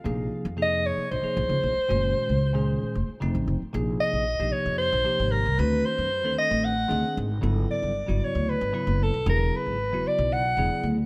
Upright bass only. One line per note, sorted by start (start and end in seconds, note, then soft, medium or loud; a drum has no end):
0.05 0.28 A#1 medium
0.45 0.90 F2 medium
0.97 muted upright bass stroke soft
1.11 1.23 A#1 medium
1.24 muted upright bass stroke soft
1.37 1.48 A#1 medium
1.49 1.61 C#2 medium
1.63 1.75 A#1 medium
1.77 muted upright bass stroke soft
1.90 2.13 F#1 medium
2.29 2.74 C#2 medium
2.83 muted upright bass stroke soft
2.95 3.06 F1 medium
3.09 muted upright bass stroke soft
3.22 3.33 F1 medium
3.35 3.46 A1 medium
3.48 3.59 F1 medium
3.62 muted upright bass stroke soft
3.74 3.96 A#1 medium
4.13 4.36 A#1 medium
4.40 4.51 A#1 medium
4.66 4.88 F2 medium
4.93 5.04 A#1 medium
5.20 5.41 G#1 medium
5.46 5.57 C2 medium
5.59 5.81 D2 medium
5.98 6.25 F#2 medium
6.25 6.35 D2 medium
6.51 6.84 A1 medium
6.91 7.01 D2 medium
7.17 7.39 G#1 medium
7.43 7.65 G1 medium
7.83 8.04 G1 medium
8.09 8.20 G1 medium
8.35 8.57 D2 medium
8.61 8.72 G1 medium
8.87 9.09 F#1 medium
9.14 9.25 B1 medium
9.26 9.48 E1 loud
9.66 9.92 G#1 medium
9.92 10.03 E1 medium
10.18 10.52 B1 medium
10.57 10.68 E1 medium
10.83 11.06 D2 medium